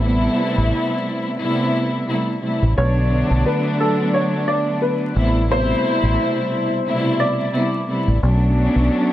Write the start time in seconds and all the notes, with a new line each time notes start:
Already playing: A1
0.03 C3 G3 A3 B3 E4
0.58 A1
1.40 C3 G3 A3 B3 E4
2.09 C3 G3 A3 B3 E4
2.42 C3 G3 A3 B3 E4
2.63 A1
2.77 B1 D3 F#3 A3 B3 D4 C#5
3.31 B1
3.46 B4
3.80 A4
4.14 C#5
4.48 D5
4.82 B4
5.16 A1 C3 G3 A3 B3 E4
5.49 B2 C3 G3 A3 E4 C5
6.03 A1
6.86 B2 C3 G3 A3 E4
7.20 D5
7.54 C3 G3 A3 B3 E4
7.88 C3 G3 A3 B3 E4
8.08 A1
8.22 B1 F#3 A3 B3 C#4 D4
8.76 B1